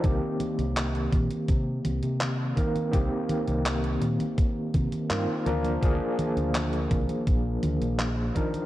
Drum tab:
HH |x-xxxxxxx-xxx-xx|x-xxxxxxx-xxx-xx|x-xxxxxxx-xxx-xx|
CP |----x-------x---|----x-------x---|----x-------x---|
CG |o-ooo-ooo-ooo-oo|o-ooo-ooo-ooo-oo|o-ooo-ooo-ooo-oo|
BD |o-----o-o-----o-|o-------o-o-----|o-----o-o-----o-|